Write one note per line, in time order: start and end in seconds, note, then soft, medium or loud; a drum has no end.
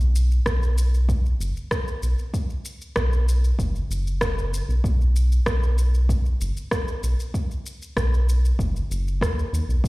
0.00 0.40 B1 medium
0.00 shaker soft
0.15 shaker medium
0.31 shaker soft
0.46 1.34 B1 medium
0.46 kick medium
0.46 cross-stick medium
0.46 shaker soft
0.63 shaker soft
0.78 shaker medium
0.94 shaker soft
1.09 kick medium
1.09 shaker soft
1.26 shaker soft
1.39 1.52 F#1 medium
1.39 shaker medium
1.57 shaker soft
1.71 kick loud
1.71 cross-stick medium
1.71 shaker soft
1.88 shaker soft
2.03 2.15 B1 medium
2.03 shaker medium
2.19 shaker soft
2.34 kick medium
2.34 shaker soft
2.50 shaker soft
2.65 shaker medium
2.81 shaker soft
2.96 3.53 B1 medium
2.96 kick medium
2.96 cross-stick loud
2.96 shaker soft
3.13 shaker soft
3.29 shaker medium
3.44 shaker soft
3.59 3.83 F#1 medium
3.59 kick loud
3.59 shaker soft
3.76 shaker soft
3.90 4.62 F#1 medium
3.90 shaker medium
4.07 shaker soft
4.21 kick loud
4.21 cross-stick loud
4.21 shaker soft
4.38 shaker soft
4.54 shaker medium
4.68 4.80 B1 medium
4.68 shaker soft
4.84 5.41 B1 loud
4.84 kick loud
4.84 shaker soft
5.01 shaker soft
5.16 shaker medium
5.32 shaker soft
5.46 6.34 B1 medium
5.46 kick loud
5.46 cross-stick loud
5.46 shaker soft
5.63 shaker soft
5.78 shaker medium
5.94 shaker soft
6.09 kick medium
6.09 shaker soft
6.26 shaker soft
6.41 6.53 F#1 medium
6.41 shaker medium
6.57 shaker soft
6.71 kick loud
6.71 cross-stick medium
6.71 shaker soft
6.88 shaker soft
7.03 7.15 B1 medium
7.03 shaker medium
7.20 shaker soft
7.34 kick loud
7.34 shaker soft
7.51 shaker soft
7.66 shaker medium
7.82 shaker soft
7.97 8.53 B1 medium
7.97 kick medium
7.97 cross-stick medium
7.97 shaker soft
8.14 shaker soft
8.29 shaker medium
8.45 shaker soft
8.59 8.83 F#1 medium
8.59 kick loud
8.59 shaker soft
8.76 shaker soft
8.90 9.23 F#1 medium
8.90 shaker medium
9.08 shaker soft
9.21 9.45 D#2 medium
9.21 kick loud
9.21 cross-stick medium
9.21 shaker soft
9.39 shaker soft
9.53 9.65 D#2 medium
9.53 shaker medium
9.68 9.80 B1 medium
9.68 shaker soft
9.84 9.88 F#1 medium
9.84 kick loud